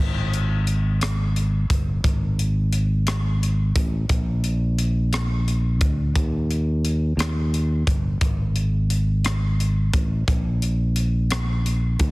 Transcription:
0.00 G#1
0.34 closed hi-hat
0.67 closed hi-hat
1.01 cross-stick, closed hi-hat
1.36 closed hi-hat
1.70 G1, kick, closed hi-hat
2.04 G#1, kick, closed hi-hat
2.39 closed hi-hat
2.73 closed hi-hat
3.07 cross-stick, closed hi-hat
3.43 closed hi-hat
3.76 A1, kick, closed hi-hat
4.09 A#1, kick, closed hi-hat
4.44 closed hi-hat
4.79 closed hi-hat
5.13 cross-stick, closed hi-hat
5.48 closed hi-hat
5.81 D2, kick, closed hi-hat
6.16 D#2, kick, closed hi-hat
6.51 closed hi-hat
6.85 closed hi-hat
7.17 D#2, cross-stick, closed hi-hat
7.54 closed hi-hat
7.87 G1, kick, closed hi-hat
8.21 G#1, kick, closed hi-hat
8.56 closed hi-hat
8.90 closed hi-hat
9.25 cross-stick, closed hi-hat
9.60 closed hi-hat
9.93 A1, kick, closed hi-hat
10.28 A#1, kick, closed hi-hat
10.62 closed hi-hat
10.96 closed hi-hat
11.31 cross-stick, closed hi-hat
11.66 closed hi-hat
11.99 D2, kick, closed hi-hat

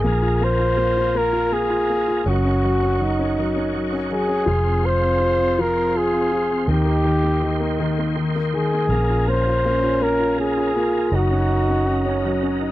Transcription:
Already playing: G#4
0.02 A#1 A#3 F4 A#4 F5 G#5 A#5
0.22 F4
0.41 A#3 C5
0.60 F4
0.77 A#3
0.97 F4
1.15 A#3 A#4
1.33 F4
1.52 A#3 G#4
1.70 F4
1.90 A#3
2.08 F4
2.26 F#1 F#3 C#4 F#4 D#5 F#5 C#6
2.45 C#4
2.65 F#3
2.83 C#4
2.99 F#3 D#4
3.19 C#4
3.38 F#3
3.56 C#4
3.74 F#3
3.93 C#4
4.11 F#3 G#4
4.29 C#4
4.46 F1 F3 F4 G#4 C5 F5 C6
4.65 C4
4.83 F4 C5
5.02 C4
5.20 F4
5.38 C4
5.59 F3 A#4
5.76 C4
5.95 F4 G#4
6.13 C4
6.32 F4
6.51 C4
6.68 D#2 D#3 D#4 G4 A#4 D#5 G5
6.85 A#3
7.05 D#3
7.24 A#3
7.42 D#3 D#4
7.60 A#3
7.80 D#3
7.98 A#3
8.16 D#3
8.36 A#3
8.54 D#3 G#4
8.74 A#3
8.89 A#1 A#3 C#4 A#4 F5 G#5 A#5
9.10 F4
9.28 A#3 C5
9.47 F4
9.65 A#3
9.83 F4
10.01 A#3 A#4
10.20 F4
10.39 A#3 G#4
10.57 F4
10.75 A#3 F4
10.94 F4
11.12 F#1 F#3 D#4 F#4 D#5 F#5
11.31 C#4
11.50 D#4
11.69 C#4
11.86 C#4 D#4
12.06 C#4
12.25 F#3
12.43 C#4
12.61 D#4

